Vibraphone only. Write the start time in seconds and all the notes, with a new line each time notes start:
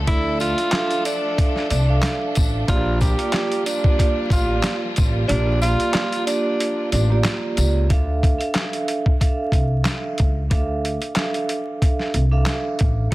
0.07 D4 A4 D5 E5
0.73 D4 A4 E5 F5
1.88 D4 A4 E5 F5
2.67 A#3 F4 G4 D5
3.18 A#3 F4 G4 D5
3.98 A#3 F4 G4 D5
5.30 A#3 F4 G4 D5
5.92 A#3 F4 G4 D5
7.10 A#3 F4 G4 D5
7.89 D4 A4 E5 F5
8.38 D4 A4 E5 F5
9.20 D4 A4 E5 F5
10.50 D4 A4 E5 F5
11.16 D4 A4 E5 F5
12.32 D4 A4 E5 F5
13.11 A#3 F4 G4